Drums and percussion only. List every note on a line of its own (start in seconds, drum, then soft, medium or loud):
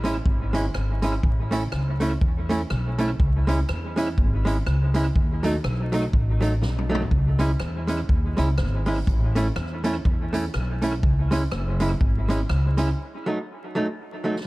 0.05 closed hi-hat medium
0.26 kick loud
0.54 closed hi-hat medium
0.75 cross-stick loud
1.02 closed hi-hat medium
1.23 kick loud
1.52 closed hi-hat medium
1.72 cross-stick loud
2.00 closed hi-hat medium
2.21 kick loud
2.50 closed hi-hat medium
2.70 cross-stick loud
2.98 closed hi-hat medium
3.20 kick loud
3.48 closed hi-hat medium
3.69 cross-stick loud
3.97 closed hi-hat medium
4.18 kick loud
4.47 closed hi-hat medium
4.67 cross-stick loud
4.94 closed hi-hat medium
5.16 kick loud
5.44 closed hi-hat medium
5.64 cross-stick loud
5.93 closed hi-hat medium
6.13 kick loud
6.42 closed hi-hat medium
6.62 snare medium
6.78 mid tom medium
6.95 floor tom loud
7.11 kick loud
7.39 closed hi-hat medium
7.60 cross-stick loud
7.88 closed hi-hat medium
8.09 kick loud
8.38 closed hi-hat medium
8.58 cross-stick loud
8.86 open hi-hat medium
9.07 kick loud
9.07 hi-hat pedal medium
9.36 closed hi-hat medium
9.56 cross-stick loud
9.84 closed hi-hat medium
10.05 kick loud
10.34 closed hi-hat medium
10.54 cross-stick loud
10.82 closed hi-hat medium
11.03 kick loud
11.32 closed hi-hat medium
11.52 cross-stick loud
11.80 closed hi-hat medium
12.01 kick loud
12.30 closed hi-hat medium
12.49 cross-stick loud
12.78 closed hi-hat medium